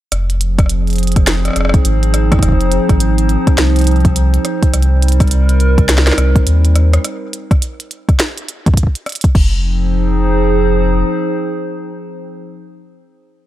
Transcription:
0.12 F1 F3, cross-stick, closed hi-hat
0.30 closed hi-hat
0.39 C4 G#4, closed hi-hat
0.49 C5
0.59 kick, cross-stick, closed hi-hat
0.66 cross-stick, closed hi-hat
0.87 closed hi-hat
0.90 closed hi-hat
0.93 closed hi-hat
0.96 closed hi-hat
0.98 closed hi-hat
1.03 closed hi-hat
1.07 closed hi-hat
1.12 closed hi-hat
1.16 kick, cross-stick, closed hi-hat
1.23 D#4, snare, closed hi-hat
1.45 cross-stick, closed hi-hat
1.48 cross-stick
1.51 cross-stick
1.53 F1, cross-stick
1.56 cross-stick, closed hi-hat
1.61 cross-stick
1.65 cross-stick
1.69 cross-stick
1.74 kick, closed hi-hat
1.85 G#1, closed hi-hat
2.03 closed hi-hat
2.14 cross-stick, closed hi-hat
2.32 kick, cross-stick, closed hi-hat
2.39 F1, kick
2.43 kick, cross-stick, closed hi-hat
2.49 kick
2.52 kick
2.61 closed hi-hat
2.72 closed hi-hat
2.89 G#1, kick, cross-stick, closed hi-hat
3.00 closed hi-hat
3.18 closed hi-hat
3.29 closed hi-hat
3.47 kick, cross-stick, closed hi-hat
3.58 C2, snare, closed hi-hat
3.76 closed hi-hat
3.79 closed hi-hat
3.81 closed hi-hat
3.84 closed hi-hat
3.87 closed hi-hat
3.91 closed hi-hat
3.96 closed hi-hat
4.00 closed hi-hat
4.05 kick, closed hi-hat
4.16 closed hi-hat
4.34 closed hi-hat
4.45 cross-stick, closed hi-hat
4.63 kick, closed hi-hat
4.73 C2 G3, cross-stick, closed hi-hat
4.83 closed hi-hat
5.02 closed hi-hat
5.07 A#4, closed hi-hat
5.12 closed hi-hat
5.20 kick, cross-stick, closed hi-hat
5.28 closed hi-hat
5.31 closed hi-hat
5.49 closed hi-hat
5.60 closed hi-hat
5.78 kick, cross-stick, closed hi-hat
5.89 snare, closed hi-hat
5.98 snare
6.07 snare, closed hi-hat
6.12 snare
6.18 C2, cross-stick, closed hi-hat
6.36 kick, closed hi-hat
6.47 D#2, closed hi-hat
6.65 closed hi-hat
6.76 cross-stick, closed hi-hat
6.93 cross-stick, closed hi-hat
7.05 cross-stick, closed hi-hat
7.33 closed hi-hat
7.51 kick, cross-stick, closed hi-hat
7.62 closed hi-hat
7.80 closed hi-hat
7.91 closed hi-hat
8.09 kick, cross-stick, closed hi-hat
8.20 snare, closed hi-hat
8.38 closed hi-hat
8.49 closed hi-hat
8.66 kick, closed hi-hat
8.74 kick
8.77 kick, closed hi-hat
8.83 kick
8.87 kick
8.95 closed hi-hat
9.06 cross-stick, closed hi-hat
9.09 closed hi-hat
9.12 closed hi-hat
9.15 closed hi-hat
9.21 kick, closed hi-hat
9.24 closed hi-hat
9.35 F1 F3, kick, crash
9.46 C4
9.55 D#4
9.62 G#4
9.71 C5

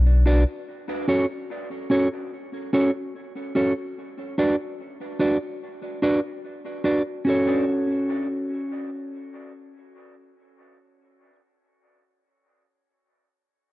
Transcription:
Already playing: B1
0.26 D4 F#4 B4 D5
1.08 C#4 F#4 A4 C#5
1.90 C#4 F#4 A4 C#5
2.73 C#4 F#4 A4 C#5
3.55 C#4 F#4 A4 C#5
4.38 D4 F#4 B4 D5
5.19 D4 F#4 B4 D5
6.02 D4 F#4 B4 D5
6.84 D4 F#4 B4 D5
7.25 C#4 F#4 A4
7.30 C#5

